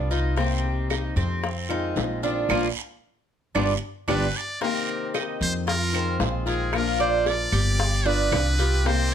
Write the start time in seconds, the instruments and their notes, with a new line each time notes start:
Already playing: upright bass C2, steel-string acoustic guitar G3 B3
0.11 steel-string acoustic guitar B3 F4, cuban tres D#4, short guiro
0.37 steel-string acoustic guitar C3 D#3 A#3 C4 G4, cuban tres C4, high bongo, long guiro
0.64 high bongo
0.90 cuban tres D#4, high bongo, short guiro, claves
1.16 upright bass F2, cuban tres C4, high bongo, short guiro
1.43 muted steel-string acoustic guitar stroke, high bongo, long guiro
1.69 steel-string acoustic guitar D#3 G#3 C4 F4, cuban tres D#4, high bongo, claves
1.96 upright bass A#1, steel-string acoustic guitar D#3 G#3 C4 F4, high bongo, low bongo, short guiro
2.23 steel-string acoustic guitar D#3 G#3 C4 F4, cuban tres D4, short guiro
2.49 upright bass A#1, steel-string acoustic guitar F3 A#3 D4, cuban tres A#3 D4 F4, low bongo, long guiro, claves
3.55 upright bass G1, steel-string acoustic guitar G3 B3 D4, cuban tres D4 F4 G4, low bongo, long guiro, claves
4.08 upright bass G1, steel-string acoustic guitar G3 B3 D4, cuban tres D4 F4 G4, muted trumpet B4, low bongo, long guiro, claves
4.36 muted trumpet D5
4.61 steel-string acoustic guitar C3 D#3 A#3 C4 G4, cuban tres C4, muted trumpet A#4, high bongo, long guiro
5.14 cuban tres D#4, high bongo, short guiro, claves
5.41 upright bass F2, muted trumpet C5, short guiro
5.67 cuban tres F4, muted trumpet A#4, muted steel-string acoustic guitar stroke, high bongo, long guiro
5.93 steel-string acoustic guitar D#3 G#3 C4 F4, cuban tres C5, claves
6.19 upright bass A#1, steel-string acoustic guitar D#3 G#3 C4 F4, high bongo, low bongo, short guiro
6.46 steel-string acoustic guitar D#3 G#3 C4 F4, muted trumpet G#4, cuban tres A#4, short guiro
6.73 steel-string acoustic guitar F3 A#3 D4 F4, muted trumpet A#4, high bongo, long guiro, claves
7.00 muted trumpet C5, cuban tres D5, high bongo
7.26 muted trumpet D5, high bongo, short guiro
7.52 upright bass G1, cuban tres G4, short guiro, claves
7.79 muted steel-string acoustic guitar stroke, high bongo, long guiro
8.05 steel-string acoustic guitar B3 F4, cuban tres D4, muted trumpet B4, high bongo
8.31 upright bass C2, steel-string acoustic guitar G3 B3 F4, high bongo, low bongo, short guiro, claves
8.58 steel-string acoustic guitar B3 F4, cuban tres G4, high bongo, short guiro
8.84 steel-string acoustic guitar C3 D#3 A#3 C4 G4, cuban tres C4, muted trumpet C5, high bongo, long guiro